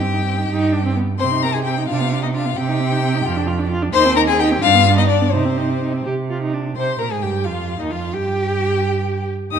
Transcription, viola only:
0.02 C4
0.14 D#4
0.25 C4
0.37 D#4
0.49 D#4
0.72 D4
0.85 C4
0.97 B3
1.19 C4
1.32 D#4
1.43 C4
1.55 D#4
1.66 C4
1.78 D#4
1.90 D4
2.00 B3
2.12 D4
2.24 B3
2.35 D4
2.46 B3
2.57 C4
2.68 D#4
2.80 C4
2.92 D#4
3.04 C4
3.15 D#4
3.26 F4
3.37 D4
3.48 F4
3.59 D4
3.71 F4
3.82 D4
3.94 D#4
4.05 C4
4.17 D#4
4.28 C4
4.40 D#4
4.51 C4
4.62 D4
4.75 B3
4.86 D4
4.98 B3
5.10 D4
5.21 B3
5.34 D#4
5.45 C4
5.58 D#4
5.70 C4
5.81 D#4
5.93 C4
6.05 G4
6.30 F4
6.42 D#4
6.53 D4
6.77 C5
7.00 A#4
7.11 G#4
7.22 G4
7.45 F4
7.79 D#4
7.91 F4
8.14 G4
9.52 D#4

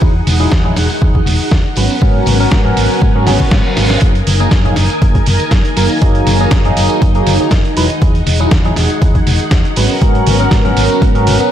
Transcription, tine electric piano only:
0.02 F#3 D#4 E4 G#4
0.40 F#3 D#4 E4 G#4
0.65 F#3 D#4 E4 G#4
1.01 F#3 D#4 E4 G#4
1.77 F#3 B3 C#4 B4
2.02 F#3 B3 C#4 A#4
2.40 F#3 B3 C#4 A#4
2.64 F#3 B3 C#4 A#4
3.15 F#3 B3 C#4 A#4
3.27 F#3 B3 C#4 G#4
3.40 F#3 B3 C#4 C#5
3.65 F#3 B3 C#4 A#4
4.01 F#3 A#3 D#4 G#4
4.40 F#3 A#3 D#4 G#4
4.65 F#3 A#3 D#4 G#4
5.01 F#3 A#3 D#4 G#4
5.77 F#3 A#3 D#4 A#4
6.02 F#3 A#3 D#4 G#4
6.40 F#3 A#3 D#4 G#4
6.65 F#3 A#3 D#4 G#4
7.15 F#3 A#3 D#4 G#4
7.40 F#3 A#3 D#4 G#4
7.77 F#3 D#4 E4 B4
8.02 F#3 D#4 E4 G#4
8.40 F#3 D#4 E4 G#4
8.65 F#3 D#4 E4 G#4
9.01 F#3 D#4 E4 G#4
9.76 F#3 B3 C#4 B4
10.01 F#3 B3 C#4 A#4
10.40 F#3 B3 C#4 A#4
10.64 F#3 B3 C#4 A#4
11.15 F#3 B3 C#4 A#4
11.40 F#3 B3 C#4 A#4

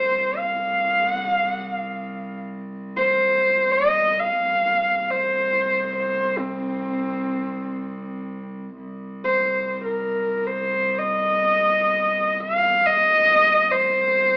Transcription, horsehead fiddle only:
Already playing: C5
0.37 F5
1.09 F#5
1.28 F5
1.49 F#5
1.69 F5
2.97 C5
3.72 D#5
4.19 F5
5.11 C5
5.97 C5
6.39 C4
9.25 C5
9.85 A#4
10.47 C5
10.99 D#5
12.41 F5
12.85 D#5
13.72 C5

